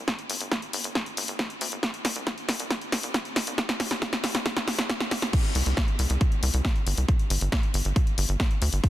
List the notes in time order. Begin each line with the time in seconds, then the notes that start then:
0.08 kick, snare, closed hi-hat
0.19 closed hi-hat
0.30 G1, open hi-hat
0.41 G1, closed hi-hat
0.52 kick, snare, closed hi-hat
0.62 closed hi-hat
0.73 G1, open hi-hat
0.84 G1, closed hi-hat
0.95 kick, snare, closed hi-hat
1.06 closed hi-hat
1.17 G1, open hi-hat
1.28 G1, closed hi-hat
1.39 kick, snare, closed hi-hat
1.50 closed hi-hat
1.61 D2, open hi-hat
1.72 G1, closed hi-hat
1.83 kick, snare, closed hi-hat
1.94 closed hi-hat
2.05 C2, snare, open hi-hat
2.16 C2, closed hi-hat
2.27 kick, snare, closed hi-hat
2.38 closed hi-hat
2.49 C2, snare, open hi-hat
2.60 C2, closed hi-hat
2.71 kick, snare, closed hi-hat
2.81 closed hi-hat
2.92 C2, snare, open hi-hat
3.03 C2, closed hi-hat
3.14 kick, snare, closed hi-hat
3.25 closed hi-hat
3.36 G1, snare, open hi-hat
3.47 C2, closed hi-hat
3.58 kick, snare, closed hi-hat
3.69 snare, closed hi-hat
3.80 D#2, snare, open hi-hat
3.91 D#2, snare, closed hi-hat
4.02 kick, snare, closed hi-hat
4.13 snare, closed hi-hat
4.24 D#2, snare, open hi-hat
4.35 D#2, snare, closed hi-hat
4.46 kick, snare, closed hi-hat
4.57 snare, closed hi-hat
4.68 D#2, snare, open hi-hat
4.79 D#2, snare, closed hi-hat
4.90 kick, snare, closed hi-hat
5.00 snare, closed hi-hat
5.11 A#1, snare, open hi-hat
5.22 D#2, snare, closed hi-hat
5.33 kick, closed hi-hat, crash
5.44 closed hi-hat
5.55 C2, open hi-hat
5.66 C2, closed hi-hat
5.77 kick, snare, closed hi-hat
5.88 closed hi-hat
5.99 C2, open hi-hat
6.10 C2, closed hi-hat
6.21 kick, closed hi-hat
6.32 closed hi-hat
6.43 C2, open hi-hat
6.54 C2, closed hi-hat
6.65 kick, snare, closed hi-hat
6.76 closed hi-hat
6.87 G1, open hi-hat
6.97 C2, closed hi-hat
7.08 kick, closed hi-hat
7.19 closed hi-hat
7.30 G1, open hi-hat
7.41 G1, closed hi-hat
7.52 kick, snare, closed hi-hat
7.63 closed hi-hat
7.74 G1, open hi-hat
7.85 G1, closed hi-hat
7.96 kick, closed hi-hat
8.07 closed hi-hat
8.18 G1, open hi-hat
8.29 G1, closed hi-hat
8.40 kick, snare, closed hi-hat
8.51 closed hi-hat
8.62 D2, open hi-hat
8.73 G1, closed hi-hat
8.84 kick, closed hi-hat